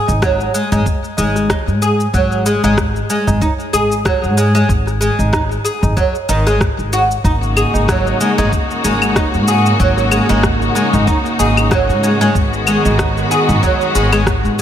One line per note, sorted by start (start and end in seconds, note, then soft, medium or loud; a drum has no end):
0.00 0.21 G#4 medium
0.08 0.45 G#1 medium
0.08 tabla na medium
0.08 cabasa soft
0.22 0.53 F#3 medium
0.22 kick loud
0.22 cross-stick loud
0.22 cabasa soft
0.40 tabla tin medium
0.40 cabasa soft
0.54 0.71 G#3 medium
0.54 cabasa medium
0.72 0.80 G#1 medium
0.72 0.85 G#3 medium
0.72 tabla na medium
0.72 tabla tin medium
0.72 tabla ge medium
0.72 cabasa soft
0.86 kick loud
0.86 cabasa soft
1.03 tabla na soft
1.03 cabasa soft
1.17 1.69 G#1 medium
1.17 1.48 G#3 medium
1.17 tabla na medium
1.17 cabasa medium
1.36 cross-stick soft
1.36 cabasa soft
1.50 1.60 D#4 medium
1.50 kick loud
1.50 cross-stick loud
1.50 cabasa soft
1.67 2.05 G#2 medium
1.67 cabasa soft
1.82 2.12 G#4 medium
1.82 cabasa medium
2.00 cabasa soft
2.14 2.52 G#1 medium
2.14 2.44 F#3 medium
2.14 kick loud
2.14 cabasa soft
2.32 cabasa soft
2.46 2.63 G#3 medium
2.46 cabasa medium
2.63 3.01 G#1 medium
2.63 2.77 G#3 medium
2.63 tabla na medium
2.63 cabasa soft
2.77 kick loud
2.77 cross-stick loud
2.77 cabasa soft
2.96 tabla tin medium
2.96 cabasa soft
3.10 3.40 G#3 medium
3.10 cabasa medium
3.27 3.36 G#1 medium
3.27 tabla na medium
3.27 tabla tin soft
3.27 tabla ge medium
3.27 cabasa soft
3.41 3.52 D#4 medium
3.41 kick loud
3.41 cabasa soft
3.59 tabla na soft
3.59 cabasa soft
3.73 4.25 G#1 medium
3.73 4.04 G#4 medium
3.73 tabla tin medium
3.73 cabasa medium
3.92 cabasa soft
4.05 4.36 F#3 medium
4.05 kick loud
4.05 cross-stick loud
4.05 cabasa soft
4.23 4.60 G#2 medium
4.23 cabasa soft
4.37 4.54 G#3 medium
4.37 cabasa medium
4.55 4.68 G#3 loud
4.55 tabla tin soft
4.55 cabasa soft
4.69 5.07 G#1 medium
4.69 kick loud
4.69 cabasa soft
4.87 cross-stick soft
4.87 cabasa soft
5.01 5.31 G#3 medium
5.01 cabasa medium
5.19 5.56 G#1 medium
5.19 tabla na medium
5.19 cabasa soft
5.33 5.43 D#4 medium
5.33 kick loud
5.33 cross-stick loud
5.33 cabasa soft
5.51 tabla tin soft
5.51 cabasa soft
5.65 5.95 G#4 medium
5.65 cabasa medium
5.83 5.91 G#1 loud
5.83 tabla na medium
5.83 tabla tin soft
5.83 tabla ge medium
5.83 cabasa soft
5.97 6.13 F#3 medium
5.97 kick loud
5.97 cabasa soft
6.15 tabla na soft
6.15 cabasa soft
6.29 6.67 G#1 medium
6.29 6.46 D#3 loud
6.29 tabla na medium
6.29 cabasa medium
6.47 6.59 G#3 medium
6.47 cross-stick soft
6.47 cabasa soft
6.61 kick loud
6.61 cross-stick loud
6.61 cabasa soft
6.79 7.16 G#1 medium
6.79 cabasa soft
6.93 7.03 F#4 medium
6.93 cabasa medium
7.11 cabasa soft
7.24 7.63 G#1 medium
7.24 12.31 C#3 medium
7.24 12.31 A#3 medium
7.24 9.77 D#4 medium
7.24 7.35 D#4 medium
7.24 12.31 F#4 medium
7.24 kick loud
7.24 cabasa soft
7.43 cabasa soft
7.57 7.87 G#4 medium
7.57 cabasa medium
7.57 claves medium
7.74 8.11 G#1 medium
7.74 tabla na medium
7.74 cabasa soft
7.88 8.19 F#3 medium
7.88 kick loud
7.88 cross-stick medium
7.88 cabasa soft
8.06 tabla tin medium
8.06 cabasa soft
8.21 8.37 G#3 medium
8.21 cabasa medium
8.38 8.47 G#1 medium
8.38 8.51 G#3 medium
8.38 tabla na medium
8.38 tabla tin soft
8.38 tabla ge medium
8.38 cabasa soft
8.52 kick loud
8.52 cabasa soft
8.70 tabla na soft
8.70 cabasa soft
8.84 9.36 G#1 medium
8.84 9.15 G#3 medium
8.84 tabla tin medium
8.84 cabasa medium
9.02 cabasa soft
9.02 claves medium
9.16 9.26 D#4 medium
9.16 kick loud
9.16 cross-stick loud
9.16 cabasa soft
9.34 9.71 G#2 medium
9.34 cabasa soft
9.48 9.78 G#4 medium
9.48 cabasa medium
9.66 tabla tin soft
9.66 cabasa soft
9.80 10.18 G#1 medium
9.80 10.10 F#3 medium
9.80 12.32 D#4 medium
9.80 kick loud
9.80 cabasa soft
9.98 cross-stick soft
9.98 cabasa soft
10.12 10.28 G#3 medium
10.12 cabasa medium
10.12 claves medium
10.29 10.67 G#1 medium
10.29 10.43 G#3 medium
10.29 tabla na medium
10.29 cabasa soft
10.43 kick loud
10.43 cross-stick loud
10.43 cabasa soft
10.62 tabla tin soft
10.62 cabasa soft
10.75 11.06 G#3 medium
10.75 cabasa medium
10.93 11.02 G#1 loud
10.93 tabla na medium
10.93 tabla tin soft
10.93 tabla ge medium
10.93 cabasa soft
11.07 11.17 D#4 medium
11.07 kick loud
11.07 cabasa soft
11.26 tabla na soft
11.26 cabasa soft
11.39 11.91 G#1 medium
11.39 11.70 G#4 medium
11.39 tabla na medium
11.39 cabasa medium
11.57 cross-stick soft
11.57 cabasa soft
11.57 claves medium
11.71 12.02 F#3 medium
11.71 kick medium
11.71 cross-stick medium
11.71 cabasa soft
11.89 12.26 G#2 medium
11.89 cabasa soft
12.03 12.20 G#3 medium
12.03 cabasa medium
12.21 12.34 G#3 loud
12.21 cabasa soft
12.35 12.73 G#1 medium
12.35 14.62 D#3 medium
12.35 14.62 G#3 medium
12.35 14.62 B3 medium
12.35 14.62 F#4 medium
12.35 kick loud
12.35 cabasa soft
12.53 cabasa soft
12.67 12.98 G#3 medium
12.67 cabasa medium
12.67 claves medium
12.85 13.22 G#1 medium
12.85 tabla na medium
12.85 cabasa soft
12.99 13.09 D#4 medium
12.99 kick loud
12.99 cross-stick loud
12.99 cabasa soft
13.17 tabla tin medium
13.17 cabasa soft
13.31 13.61 G#4 medium
13.31 cabasa medium
13.48 13.57 G#1 loud
13.48 tabla na medium
13.48 tabla tin medium
13.48 tabla ge medium
13.48 cabasa soft
13.63 13.93 F#3 medium
13.63 kick medium
13.63 cabasa soft
13.80 tabla na soft
13.80 cabasa soft
13.95 14.46 G#1 medium
13.95 14.11 G#3 medium
13.95 tabla tin medium
13.95 cabasa medium
14.12 14.26 G#3 loud
14.12 cabasa soft
14.12 claves medium
14.27 kick loud
14.27 cross-stick loud
14.27 cabasa soft
14.44 14.62 G#2 medium
14.44 cabasa soft
14.59 14.62 G#3 medium